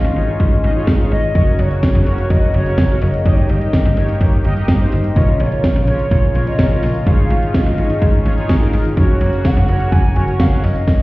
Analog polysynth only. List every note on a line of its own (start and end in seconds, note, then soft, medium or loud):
0.16 0.50 D#4 medium
0.16 0.50 F4 medium
0.16 0.50 G#4 medium
0.16 0.50 C#5 medium
0.64 0.72 D#4 medium
0.64 0.72 F4 medium
0.64 0.72 G#4 medium
0.64 0.72 D#5 loud
0.76 0.93 D#4 medium
0.76 0.93 F4 medium
0.76 0.93 G#4 medium
0.76 0.93 C#5 loud
1.00 1.25 D#4 medium
1.00 1.25 F4 medium
1.00 1.25 G#4 medium
1.00 1.25 C#5 medium
1.35 1.86 C#4 medium
1.35 1.86 F#4 medium
1.35 1.86 A#4 medium
1.35 1.86 C#5 medium
2.07 2.40 C#4 medium
2.07 2.40 F#4 medium
2.07 2.40 A#4 medium
2.07 2.40 C#5 medium
2.54 2.63 C#4 medium
2.54 2.63 F#4 medium
2.54 2.63 A#4 medium
2.54 2.63 D#5 medium
2.66 2.83 C#4 medium
2.66 2.83 F#4 medium
2.66 2.83 A#4 medium
2.66 2.83 C#5 medium
2.90 3.15 C#4 medium
2.90 3.15 F#4 medium
2.90 3.15 A#4 medium
2.90 3.15 C#5 medium
3.26 3.76 D#4 medium
3.26 3.76 G4 medium
3.26 3.76 A#4 medium
3.26 3.76 D#5 medium
3.97 4.31 D#4 medium
3.97 4.31 G4 medium
3.97 4.31 A#4 medium
3.97 4.31 C#5 medium
4.45 4.53 D#4 medium
4.45 4.53 G4 medium
4.45 4.53 A#4 medium
4.45 4.53 D#5 loud
4.57 4.73 D#4 medium
4.57 4.74 G4 medium
4.57 4.73 A#4 medium
4.57 4.73 D#5 loud
4.81 5.06 D#4 medium
4.81 5.06 G4 medium
4.81 5.06 A#4 medium
4.81 5.06 C5 medium
5.16 5.67 C#4 medium
5.16 5.67 F4 medium
5.16 5.67 A#4 medium
5.16 5.67 C#5 medium
5.88 6.21 C#4 medium
5.88 6.21 F4 medium
5.88 6.21 A#4 medium
5.88 6.21 C#5 medium
6.35 6.44 C#4 medium
6.35 6.44 F4 medium
6.35 6.44 A#4 medium
6.35 6.44 C#5 medium
6.47 6.64 C#4 medium
6.47 6.64 F4 medium
6.47 6.64 A#4 medium
6.47 6.64 C#5 medium
6.71 6.96 C#4 medium
6.71 6.96 F4 medium
6.71 6.96 A#4 medium
6.71 6.96 C#5 medium
7.07 7.57 D#4 medium
7.07 7.57 F4 medium
7.07 7.57 G#4 medium
7.07 7.57 C#5 medium
7.78 8.12 D#4 medium
7.78 8.12 F4 medium
7.78 8.12 G#4 medium
7.78 8.12 C#5 medium
8.26 8.34 D#4 medium
8.26 8.34 F4 medium
8.26 8.34 G#4 medium
8.26 8.34 C#5 loud
8.38 8.54 D#4 medium
8.38 8.54 F4 medium
8.38 8.54 G#4 medium
8.38 8.54 C#5 loud
8.61 8.87 D#4 medium
8.61 8.87 F4 medium
8.61 8.87 G#4 medium
8.61 8.87 A#4 loud
8.97 9.48 C#4 medium
8.97 9.48 F#4 medium
8.97 9.48 A#4 medium
8.97 9.48 C#5 medium
9.69 10.02 C#4 medium
9.69 10.02 F#4 medium
9.69 10.02 A#4 medium
9.69 10.02 C#5 medium
10.16 10.25 C#4 medium
10.16 10.25 F#4 medium
10.16 10.25 A#4 medium
10.16 10.25 C#5 medium
10.28 10.45 C#4 medium
10.28 10.45 F#4 medium
10.28 10.45 A#4 medium
10.28 10.45 C#5 medium
10.52 10.77 C#4 medium
10.52 10.77 F#4 medium
10.52 10.77 A#4 medium
10.52 10.77 C#5 medium